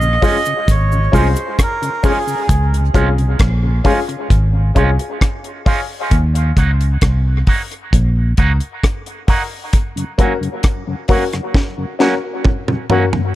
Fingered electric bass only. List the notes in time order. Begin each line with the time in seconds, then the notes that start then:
Already playing: A#1
0.68 G#1
1.13 C2
2.49 C#2
2.95 C2
3.40 A#1
4.31 G#1
4.76 C2
6.12 D#2
6.57 C#2
7.02 C2
7.93 A#1
8.39 C#2